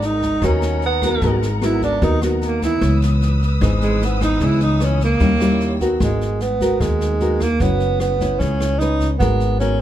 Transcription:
Already playing: upright bass G#1, nylon-string guitar G#3, string section A#4 F#5 A#5
0.02 tenor saxophone D#4, snare
0.22 kick, snare
0.42 upright bass D#2, nylon-string guitar D#3 B3 F#4 A#4, tenor saxophone C#4, kick, cross-stick, snare
0.62 snare
0.82 tenor saxophone B3, snare
1.02 nylon-string guitar B3 F#4 A#4, kick, cross-stick, snare
1.21 upright bass G#1, nylon-string guitar G#3 B3 F#4 A#4, kick, snare
1.42 snare
1.61 nylon-string guitar B3 F#4 A#4, tenor saxophone E4, cross-stick, snare
1.82 tenor saxophone D4, kick, snare
2.02 upright bass D#2, nylon-string guitar D#3 B3 F#4 A#4, tenor saxophone D#4, kick, snare
2.21 tenor saxophone F#3, nylon-string guitar B3 F#4 A#4, cross-stick, snare
2.41 tenor saxophone A#3, snare
2.62 nylon-string guitar E3 B3, tenor saxophone E4, kick, snare
2.81 upright bass C#2, nylon-string guitar C#3, string section B4 D#6 E6, kick, cross-stick, snare
3.02 snare
3.22 snare
3.42 kick, snare
3.61 upright bass G#1, nylon-string guitar G#2 E3 B3 D#4, kick, cross-stick, snare
3.81 tenor saxophone G#3, snare
4.01 tenor saxophone B3, snare
4.21 nylon-string guitar E3 B3 D#4, tenor saxophone D#4, kick, cross-stick, snare
4.40 upright bass C#2, nylon-string guitar C#3, kick, snare
4.44 tenor saxophone E4
4.61 tenor saxophone D#4, snare
4.80 nylon-string guitar E3 B3 D#4, cross-stick, snare
4.84 tenor saxophone C#4
5.01 tenor saxophone A#3, kick, snare
5.20 upright bass D#2, nylon-string guitar D#3 G3 C#4 E4, string section C#5 G5 E6, kick, snare
5.40 nylon-string guitar G3 C#4 E4, cross-stick, snare
5.60 snare
5.80 nylon-string guitar B3 F#4 A#4, kick, snare
6.00 upright bass G#1, nylon-string guitar G#3, tenor saxophone G#3, kick, cross-stick, snare
6.21 snare
6.40 tenor saxophone B3, snare
6.60 nylon-string guitar B3 F#4 A#4, kick, snare
6.80 upright bass D#2, nylon-string guitar D#3, tenor saxophone G#3, kick, cross-stick, snare
7.01 snare
7.20 nylon-string guitar B3 F#4 A#4, snare
7.40 tenor saxophone A#3, kick, cross-stick, snare
7.60 upright bass F#1, nylon-string guitar F#3 C#4 E4 B4, tenor saxophone B3, kick, snare
7.80 snare
8.00 tenor saxophone B3, cross-stick, snare
8.20 nylon-string guitar C#4 E4 B4, kick, snare
8.39 upright bass C#2, nylon-string guitar C#3, tenor saxophone C#4, kick, snare
8.60 cross-stick, snare
8.79 nylon-string guitar C#4 B4, tenor saxophone D#4, snare
9.00 kick, snare
9.19 upright bass G#1, nylon-string guitar G#3 B3 F#4 A#4, tenor saxophone B3, kick, cross-stick, snare
9.40 snare
9.59 nylon-string guitar B3 F#4 A#4, tenor saxophone C#4, snare

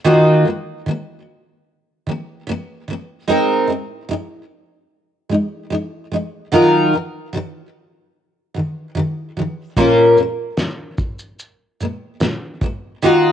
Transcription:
0.04 steel-string acoustic guitar D#3 A#3 D#4 F4 F#4
0.45 steel-string acoustic guitar D#3 A#3
0.86 steel-string acoustic guitar D#3 A#3
2.07 steel-string acoustic guitar D#3 A#3
2.47 steel-string acoustic guitar D#3 A#3
2.88 steel-string acoustic guitar D#3 A#3
3.27 steel-string acoustic guitar G#3 C4 D#4 A#4
3.67 steel-string acoustic guitar G#3 D#4
4.09 steel-string acoustic guitar G#3 D#4
5.30 steel-string acoustic guitar G#3 D#4
5.70 steel-string acoustic guitar G#3 D#4
6.12 steel-string acoustic guitar G#3 D#4
6.52 steel-string acoustic guitar D#3 F#3 D#4 F4 A#4
6.93 steel-string acoustic guitar D#3 F#3
7.33 steel-string acoustic guitar D#3 F#3
8.54 steel-string acoustic guitar D#3 F#3
8.95 steel-string acoustic guitar D#3 F#3
9.37 steel-string acoustic guitar D#3 F#3
9.77 steel-string acoustic guitar A#2 A#3 C#4 F4 A#4, kick, shaker
10.17 steel-string acoustic guitar A#2 A#3, shaker
10.57 steel-string acoustic guitar A#2 A#3, snare, shaker
10.98 kick, shaker
11.19 shaker
11.39 shaker
11.80 steel-string acoustic guitar A#2 A#3, shaker
12.20 steel-string acoustic guitar A#2 A#3, snare, shaker
12.61 steel-string acoustic guitar A#2 A#3, kick, shaker
13.02 steel-string acoustic guitar D#3 A#3 D#4 F4 F#4, shaker

